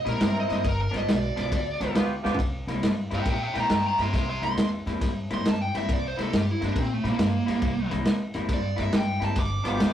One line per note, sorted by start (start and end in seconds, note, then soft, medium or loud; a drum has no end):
0.05 0.18 A#2 loud
0.05 0.29 C3 medium
0.05 0.29 G3 medium
0.05 0.29 A#3 medium
0.05 0.29 E4 loud
0.05 0.21 A#4 medium
0.05 snare soft
0.05 ride medium
0.20 0.44 G2 medium
0.20 0.64 C4 medium
0.20 0.64 E4 medium
0.20 0.65 A#4 medium
0.20 0.36 A#4 medium
0.20 snare loud
0.20 ride medium
0.40 0.52 D#5 medium
0.48 0.62 G2 medium
0.48 0.64 C3 medium
0.48 0.64 G3 medium
0.48 0.64 A#3 medium
0.48 0.64 E4 medium
0.48 snare soft
0.48 ride medium
0.53 0.66 D#5 medium
0.64 0.88 G1 medium
0.64 kick loud
0.64 ride medium
0.68 0.81 A#4 medium
0.82 0.94 A#4 medium
0.91 1.05 G1 medium
0.91 1.16 G2 medium
0.91 1.16 F3 medium
0.91 1.16 B3 medium
0.91 1.16 D4 loud
0.91 snare soft
0.91 ride medium
0.97 1.10 D#5 medium
1.08 1.32 B1 medium
1.08 1.94 D5 loud
1.08 snare loud
1.08 ride medium
1.36 1.49 B1 medium
1.36 1.61 G2 medium
1.36 1.60 F3 medium
1.36 1.60 B3 medium
1.36 1.60 D4 medium
1.36 snare soft
1.36 ride medium
1.52 1.75 D2 medium
1.52 kick loud
1.52 ride medium
1.81 1.93 D2 loud
1.81 2.05 G2 medium
1.81 2.05 F3 medium
1.81 2.05 B3 medium
1.81 2.04 D4 loud
1.81 snare soft
1.81 ride medium
1.94 2.19 D2 medium
1.94 2.12 B3 medium
1.94 2.12 F4 medium
1.94 2.13 G4 medium
1.94 snare loud
1.94 ride medium
2.22 2.36 D2 medium
2.22 2.40 G2 medium
2.22 2.39 F3 medium
2.22 2.38 B3 medium
2.22 2.39 B3 medium
2.22 2.39 D4 medium
2.22 2.39 F4 medium
2.22 2.39 G4 loud
2.22 snare medium
2.34 floor tom medium
2.39 2.63 C2 medium
2.39 kick loud
2.39 ride medium
2.67 2.80 C2 medium
2.67 2.92 C3 medium
2.67 2.92 G3 medium
2.67 2.92 A#3 medium
2.67 2.92 E4 medium
2.67 snare soft
2.67 ride medium
2.83 3.06 G2 medium
2.83 snare loud
2.83 ride medium
3.11 3.24 G2 medium
3.11 3.35 C3 medium
3.11 3.35 G3 medium
3.11 3.35 A#3 medium
3.11 3.35 E4 medium
3.11 3.28 E5 medium
3.11 snare soft
3.11 ride medium
3.15 3.28 G5 medium
3.25 3.50 A#2 medium
3.25 3.42 E5 medium
3.25 kick loud
3.25 snare soft
3.25 ride medium
3.30 3.43 G5 medium
3.43 3.56 E5 medium
3.43 3.57 G5 medium
3.54 3.68 A#2 medium
3.54 3.79 C3 medium
3.54 3.79 G3 medium
3.54 3.78 A#3 medium
3.54 3.78 E4 loud
3.54 snare soft
3.54 ride medium
3.58 3.71 G5 medium
3.58 3.72 A#5 medium
3.70 3.94 G2 medium
3.70 3.85 G5 medium
3.70 snare loud
3.70 ride medium
3.74 3.86 A#5 medium
3.86 3.99 G5 medium
3.86 4.00 A#5 medium
3.98 4.11 G2 medium
3.98 4.23 C3 medium
3.98 4.23 G3 medium
3.98 4.23 A#3 medium
3.98 4.22 E4 medium
3.98 4.14 E5 medium
3.98 4.14 C6 medium
3.98 snare soft
3.98 ride medium
4.13 4.37 C2 medium
4.13 4.28 E5 medium
4.13 4.29 C6 medium
4.13 kick loud
4.13 snare soft
4.13 ride medium
4.29 4.43 E5 medium
4.29 4.43 C6 medium
4.42 4.54 C2 medium
4.42 4.67 C3 medium
4.42 4.67 G3 medium
4.42 4.66 A#3 medium
4.42 4.66 E4 medium
4.42 4.67 C6 medium
4.42 snare soft
4.42 ride medium
4.57 4.81 E2 medium
4.57 snare loud
4.57 ride medium
4.86 4.98 E2 medium
4.86 5.11 C3 medium
4.86 5.11 G3 medium
4.86 5.10 A#3 medium
4.86 5.10 E4 medium
4.86 snare soft
4.86 ride medium
5.01 5.25 G2 medium
5.01 kick loud
5.01 snare soft
5.01 ride medium
5.30 5.43 G2 medium
5.30 5.55 C3 medium
5.30 5.54 G3 medium
5.30 5.54 A#3 medium
5.30 5.54 E4 medium
5.30 5.49 C6 loud
5.30 snare soft
5.30 ride medium
5.45 5.62 A5 medium
5.45 snare loud
5.45 ride medium
5.62 5.75 G5 medium
5.75 5.87 G2 medium
5.75 5.98 C3 medium
5.75 5.98 G3 medium
5.75 5.98 A#3 medium
5.75 5.98 E4 medium
5.75 5.93 E5 loud
5.75 snare soft
5.75 ride medium
5.89 6.12 C2 medium
5.89 kick loud
5.89 ride medium
5.93 6.05 D5 loud
6.08 6.22 C5 medium
6.17 6.30 C2 medium
6.17 6.42 C3 medium
6.17 6.42 G3 medium
6.17 6.41 A#3 medium
6.17 6.41 E4 loud
6.17 snare soft
6.17 ride medium
6.22 6.34 A4 medium
6.33 6.56 G2 medium
6.33 6.51 G4 medium
6.33 snare loud
6.33 ride medium
6.51 6.63 E4 medium
6.61 6.74 G2 medium
6.61 6.85 C3 medium
6.61 6.85 G3 medium
6.61 6.85 A#3 medium
6.61 6.85 E4 medium
6.61 snare soft
6.61 ride medium
6.66 6.78 D4 loud
6.76 6.99 A#2 loud
6.76 kick loud
6.76 ride medium
6.80 6.93 C4 medium
6.93 7.06 A3 medium
7.04 7.16 A#2 loud
7.04 7.28 C3 medium
7.04 7.28 G3 medium
7.04 7.28 A#3 medium
7.04 7.28 E4 loud
7.04 snare soft
7.04 ride medium
7.10 7.92 A#3 medium
7.19 7.43 G2 medium
7.19 snare loud
7.19 ride medium
7.46 7.60 G2 medium
7.46 7.72 C3 medium
7.46 7.72 G3 medium
7.46 7.71 A#3 medium
7.46 7.71 E4 medium
7.46 snare soft
7.46 ride medium
7.62 7.86 C2 medium
7.62 kick loud
7.62 ride medium
7.91 8.04 C2 loud
7.91 8.16 C3 medium
7.91 8.15 G3 medium
7.91 8.15 A#3 medium
7.91 8.15 E4 medium
7.91 snare soft
7.91 ride medium
8.05 8.30 E2 medium
8.05 snare loud
8.05 ride medium
8.34 8.47 E2 medium
8.34 8.59 C3 medium
8.34 8.59 G3 medium
8.34 8.59 A#3 medium
8.34 8.59 E4 medium
8.34 snare soft
8.34 ride medium
8.49 8.73 G2 medium
8.49 kick loud
8.49 snare soft
8.49 ride medium
8.53 8.80 D5 loud
8.76 8.91 G2 medium
8.76 9.02 C3 medium
8.76 9.02 G3 medium
8.76 9.02 A#3 medium
8.76 9.01 E4 medium
8.76 snare soft
8.76 ride medium
8.83 8.96 E5 medium
8.93 9.17 G2 medium
8.93 9.23 G5 medium
8.93 snare loud
8.93 ride medium
9.20 9.34 G2 medium
9.20 9.37 C3 medium
9.20 9.37 G3 medium
9.20 9.37 A#3 medium
9.20 9.36 E4 medium
9.20 snare soft
9.20 ride medium
9.25 9.38 A5 medium
9.36 9.60 G1 medium
9.36 kick loud
9.36 snare soft
9.36 ride medium
9.40 9.67 D6 medium
9.64 9.77 G1 medium
9.64 9.89 G2 medium
9.64 9.89 F3 medium
9.64 9.93 B3 medium
9.64 9.89 B3 medium
9.64 9.88 D4 medium
9.64 9.93 F4 medium
9.64 9.93 G4 medium
9.64 snare soft
9.64 ride medium
9.69 9.93 D6 loud
9.80 9.93 D2 medium
9.80 snare loud
9.80 ride medium